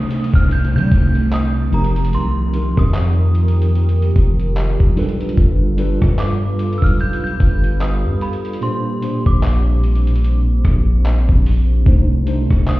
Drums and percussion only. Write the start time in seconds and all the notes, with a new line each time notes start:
0.11 closed hi-hat
0.24 closed hi-hat
0.34 kick, closed hi-hat
0.51 closed hi-hat
0.65 closed hi-hat
0.78 closed hi-hat
0.92 kick, closed hi-hat
1.15 closed hi-hat
1.32 clap, closed hi-hat
1.73 closed hi-hat
1.84 closed hi-hat
1.96 closed hi-hat
2.05 closed hi-hat
2.13 closed hi-hat
2.54 closed hi-hat
2.77 kick, cross-stick
2.94 clap, closed hi-hat
3.35 closed hi-hat
3.48 closed hi-hat
3.62 closed hi-hat
3.75 closed hi-hat
3.89 closed hi-hat
4.02 closed hi-hat
4.16 kick, closed hi-hat
4.39 closed hi-hat
4.57 clap, closed hi-hat
4.80 kick
4.97 closed hi-hat, open hi-hat
5.09 closed hi-hat
5.21 closed hi-hat
5.29 closed hi-hat
5.37 kick, closed hi-hat
5.78 closed hi-hat
6.02 kick, cross-stick
6.18 clap, closed hi-hat
6.59 closed hi-hat
6.73 closed hi-hat
6.82 kick, closed hi-hat
7.00 closed hi-hat
7.13 closed hi-hat
7.27 closed hi-hat
7.40 kick, closed hi-hat
7.64 closed hi-hat
7.81 clap, closed hi-hat
8.21 closed hi-hat
8.33 closed hi-hat
8.45 closed hi-hat
8.53 closed hi-hat
8.62 closed hi-hat
9.02 closed hi-hat
9.26 kick
9.43 clap, closed hi-hat
9.84 closed hi-hat
9.95 closed hi-hat
10.07 closed hi-hat
10.16 closed hi-hat
10.24 closed hi-hat
10.65 kick, cross-stick, closed hi-hat
11.05 clap, closed hi-hat
11.29 kick
11.46 open hi-hat
11.86 kick, closed hi-hat
12.27 closed hi-hat
12.51 kick, cross-stick
12.67 clap, closed hi-hat